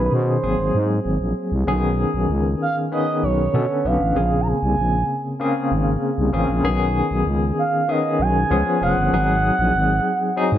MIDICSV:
0, 0, Header, 1, 4, 480
1, 0, Start_track
1, 0, Tempo, 621118
1, 1294, Time_signature, 4, 2, 24, 8
1, 8178, End_track
2, 0, Start_track
2, 0, Title_t, "Analog synth lead"
2, 0, Program_c, 0, 81
2, 44, Note_on_c, 0, 71, 61
2, 104, Note_on_c, 0, 72, 99
2, 116, Note_off_c, 0, 71, 0
2, 1059, Note_off_c, 0, 72, 0
2, 2024, Note_on_c, 0, 77, 84
2, 2130, Note_off_c, 0, 77, 0
2, 2266, Note_on_c, 0, 75, 92
2, 2499, Note_on_c, 0, 73, 87
2, 2510, Note_off_c, 0, 75, 0
2, 2983, Note_on_c, 0, 77, 92
2, 2995, Note_off_c, 0, 73, 0
2, 3408, Note_on_c, 0, 82, 72
2, 3419, Note_off_c, 0, 77, 0
2, 3461, Note_on_c, 0, 80, 114
2, 3473, Note_off_c, 0, 82, 0
2, 4178, Note_off_c, 0, 80, 0
2, 5864, Note_on_c, 0, 77, 102
2, 6108, Note_on_c, 0, 75, 101
2, 6119, Note_off_c, 0, 77, 0
2, 6346, Note_on_c, 0, 80, 107
2, 6358, Note_off_c, 0, 75, 0
2, 6820, Note_off_c, 0, 80, 0
2, 6827, Note_on_c, 0, 78, 113
2, 8178, Note_off_c, 0, 78, 0
2, 8178, End_track
3, 0, Start_track
3, 0, Title_t, "Tine electric piano"
3, 0, Program_c, 1, 4
3, 0, Control_c, 1, 64, 127
3, 0, Note_on_c, 1, 47, 57
3, 0, Note_on_c, 1, 51, 69
3, 0, Note_on_c, 1, 59, 65
3, 0, Note_on_c, 1, 61, 59
3, 0, Note_on_c, 1, 68, 72
3, 328, Note_off_c, 1, 68, 0
3, 328, Note_on_c, 1, 54, 69
3, 331, Note_off_c, 1, 51, 0
3, 331, Note_on_c, 1, 58, 61
3, 333, Note_off_c, 1, 47, 0
3, 334, Note_off_c, 1, 61, 0
3, 335, Note_on_c, 1, 60, 62
3, 337, Note_on_c, 1, 68, 78
3, 342, Control_c, 1, 64, 0
3, 345, Note_off_c, 1, 59, 0
3, 484, Control_c, 1, 64, 127
3, 1099, Note_off_c, 1, 54, 0
3, 1101, Note_off_c, 1, 58, 0
3, 1103, Note_off_c, 1, 60, 0
3, 1103, Note_off_c, 1, 68, 0
3, 1290, Note_on_c, 1, 50, 62
3, 1293, Note_on_c, 1, 59, 74
3, 1295, Note_on_c, 1, 61, 73
3, 1300, Note_on_c, 1, 68, 88
3, 1304, Control_c, 1, 64, 0
3, 1342, Note_off_c, 1, 50, 0
3, 1431, Control_c, 1, 64, 127
3, 1955, Note_off_c, 1, 59, 0
3, 1956, Note_off_c, 1, 61, 0
3, 1958, Note_off_c, 1, 68, 0
3, 2251, Note_on_c, 1, 51, 70
3, 2253, Note_on_c, 1, 59, 57
3, 2257, Note_on_c, 1, 61, 60
3, 2260, Note_on_c, 1, 71, 76
3, 2726, Note_off_c, 1, 59, 0
3, 2729, Note_off_c, 1, 61, 0
3, 2732, Note_on_c, 1, 50, 72
3, 2733, Note_off_c, 1, 51, 0
3, 2735, Note_on_c, 1, 59, 64
3, 2737, Note_off_c, 1, 71, 0
3, 2738, Note_on_c, 1, 61, 62
3, 2741, Note_on_c, 1, 69, 79
3, 2746, Control_c, 1, 64, 0
3, 2872, Control_c, 1, 64, 127
3, 2925, Note_off_c, 1, 50, 0
3, 2927, Note_off_c, 1, 59, 0
3, 2928, Note_off_c, 1, 61, 0
3, 2930, Note_off_c, 1, 69, 0
3, 2972, Note_on_c, 1, 50, 67
3, 2975, Note_on_c, 1, 59, 56
3, 2978, Note_on_c, 1, 61, 52
3, 2982, Note_on_c, 1, 71, 67
3, 3139, Note_off_c, 1, 50, 0
3, 3140, Note_off_c, 1, 59, 0
3, 3142, Note_off_c, 1, 61, 0
3, 3144, Note_off_c, 1, 71, 0
3, 3207, Note_on_c, 1, 49, 71
3, 3210, Note_on_c, 1, 58, 70
3, 3213, Note_on_c, 1, 60, 65
3, 3216, Note_on_c, 1, 68, 76
3, 3225, Control_c, 1, 64, 0
3, 3342, Control_c, 1, 64, 127
3, 3873, Note_off_c, 1, 49, 0
3, 3874, Note_off_c, 1, 58, 0
3, 3875, Note_off_c, 1, 60, 0
3, 3877, Note_off_c, 1, 68, 0
3, 4169, Note_on_c, 1, 49, 87
3, 4172, Note_on_c, 1, 58, 72
3, 4175, Note_on_c, 1, 60, 67
3, 4179, Note_on_c, 1, 68, 84
3, 4668, Note_off_c, 1, 49, 0
3, 4670, Note_off_c, 1, 58, 0
3, 4671, Note_off_c, 1, 60, 0
3, 4673, Note_off_c, 1, 68, 0
3, 4886, Note_on_c, 1, 49, 76
3, 4890, Note_on_c, 1, 58, 66
3, 4893, Note_on_c, 1, 60, 65
3, 4896, Note_on_c, 1, 68, 85
3, 5056, Note_off_c, 1, 49, 0
3, 5058, Note_off_c, 1, 58, 0
3, 5059, Note_off_c, 1, 60, 0
3, 5061, Note_off_c, 1, 68, 0
3, 5128, Note_on_c, 1, 51, 81
3, 5130, Note_on_c, 1, 59, 80
3, 5133, Note_on_c, 1, 61, 77
3, 5136, Note_on_c, 1, 68, 96
3, 5144, Control_c, 1, 64, 0
3, 5293, Control_c, 1, 64, 127
3, 5792, Note_off_c, 1, 51, 0
3, 5793, Note_off_c, 1, 59, 0
3, 5795, Note_off_c, 1, 61, 0
3, 5797, Note_off_c, 1, 68, 0
3, 6088, Note_on_c, 1, 51, 75
3, 6092, Note_on_c, 1, 59, 66
3, 6095, Note_on_c, 1, 61, 61
3, 6097, Note_on_c, 1, 68, 76
3, 6562, Note_off_c, 1, 59, 0
3, 6566, Note_off_c, 1, 61, 0
3, 6569, Note_on_c, 1, 53, 75
3, 6570, Note_off_c, 1, 68, 0
3, 6571, Note_off_c, 1, 51, 0
3, 6572, Note_on_c, 1, 59, 71
3, 6575, Note_on_c, 1, 61, 69
3, 6579, Note_on_c, 1, 68, 83
3, 6585, Control_c, 1, 64, 0
3, 6737, Control_c, 1, 64, 127
3, 6763, Note_off_c, 1, 53, 0
3, 6764, Note_off_c, 1, 59, 0
3, 6766, Note_off_c, 1, 61, 0
3, 6768, Note_off_c, 1, 68, 0
3, 6812, Note_on_c, 1, 53, 64
3, 6815, Note_on_c, 1, 59, 56
3, 6817, Note_on_c, 1, 61, 59
3, 6822, Note_on_c, 1, 68, 68
3, 6978, Note_off_c, 1, 53, 0
3, 6979, Note_off_c, 1, 59, 0
3, 6981, Note_off_c, 1, 61, 0
3, 6983, Note_off_c, 1, 68, 0
3, 7052, Note_on_c, 1, 54, 80
3, 7056, Note_on_c, 1, 59, 52
3, 7060, Note_on_c, 1, 63, 70
3, 7062, Note_on_c, 1, 68, 79
3, 7065, Control_c, 1, 64, 0
3, 7105, Note_off_c, 1, 59, 0
3, 7105, Note_on_c, 1, 60, 63
3, 7185, Control_c, 1, 64, 127
3, 7713, Note_off_c, 1, 54, 0
3, 7717, Note_off_c, 1, 63, 0
3, 7718, Note_off_c, 1, 68, 0
3, 7739, Note_off_c, 1, 60, 0
3, 8009, Note_on_c, 1, 54, 80
3, 8012, Note_on_c, 1, 60, 72
3, 8014, Note_on_c, 1, 63, 77
3, 8017, Note_on_c, 1, 68, 94
3, 8178, Note_off_c, 1, 54, 0
3, 8178, Note_off_c, 1, 60, 0
3, 8178, Note_off_c, 1, 63, 0
3, 8178, Note_off_c, 1, 68, 0
3, 8178, End_track
4, 0, Start_track
4, 0, Title_t, "FM bass"
4, 0, Program_c, 2, 39
4, 93, Note_on_c, 2, 47, 102
4, 289, Note_off_c, 2, 47, 0
4, 335, Note_on_c, 2, 32, 96
4, 432, Note_off_c, 2, 32, 0
4, 450, Note_on_c, 2, 32, 81
4, 549, Note_off_c, 2, 32, 0
4, 573, Note_on_c, 2, 44, 94
4, 769, Note_off_c, 2, 44, 0
4, 814, Note_on_c, 2, 32, 89
4, 912, Note_off_c, 2, 32, 0
4, 931, Note_on_c, 2, 34, 71
4, 1030, Note_off_c, 2, 34, 0
4, 1171, Note_on_c, 2, 36, 99
4, 1270, Note_off_c, 2, 36, 0
4, 1291, Note_on_c, 2, 35, 104
4, 1587, Note_off_c, 2, 35, 0
4, 1652, Note_on_c, 2, 35, 85
4, 1751, Note_off_c, 2, 35, 0
4, 1771, Note_on_c, 2, 37, 88
4, 1969, Note_off_c, 2, 37, 0
4, 2496, Note_on_c, 2, 35, 81
4, 2692, Note_off_c, 2, 35, 0
4, 2732, Note_on_c, 2, 47, 103
4, 2831, Note_off_c, 2, 47, 0
4, 2973, Note_on_c, 2, 35, 92
4, 3072, Note_off_c, 2, 35, 0
4, 3093, Note_on_c, 2, 33, 84
4, 3192, Note_off_c, 2, 33, 0
4, 3210, Note_on_c, 2, 34, 93
4, 3507, Note_off_c, 2, 34, 0
4, 3573, Note_on_c, 2, 36, 92
4, 3672, Note_off_c, 2, 36, 0
4, 3693, Note_on_c, 2, 34, 83
4, 3890, Note_off_c, 2, 34, 0
4, 4414, Note_on_c, 2, 32, 95
4, 4611, Note_off_c, 2, 32, 0
4, 4773, Note_on_c, 2, 36, 89
4, 4872, Note_off_c, 2, 36, 0
4, 4892, Note_on_c, 2, 33, 95
4, 4992, Note_off_c, 2, 33, 0
4, 5013, Note_on_c, 2, 34, 89
4, 5112, Note_off_c, 2, 34, 0
4, 5132, Note_on_c, 2, 35, 104
4, 5428, Note_off_c, 2, 35, 0
4, 5492, Note_on_c, 2, 35, 87
4, 5591, Note_off_c, 2, 35, 0
4, 5613, Note_on_c, 2, 37, 85
4, 5810, Note_off_c, 2, 37, 0
4, 6331, Note_on_c, 2, 35, 86
4, 6528, Note_off_c, 2, 35, 0
4, 6573, Note_on_c, 2, 37, 113
4, 6671, Note_off_c, 2, 37, 0
4, 6810, Note_on_c, 2, 29, 87
4, 6910, Note_off_c, 2, 29, 0
4, 6932, Note_on_c, 2, 31, 90
4, 7031, Note_off_c, 2, 31, 0
4, 7051, Note_on_c, 2, 32, 108
4, 7346, Note_off_c, 2, 32, 0
4, 7408, Note_on_c, 2, 34, 100
4, 7508, Note_off_c, 2, 34, 0
4, 7530, Note_on_c, 2, 32, 93
4, 7727, Note_off_c, 2, 32, 0
4, 8128, Note_on_c, 2, 44, 100
4, 8178, Note_off_c, 2, 44, 0
4, 8178, End_track
0, 0, End_of_file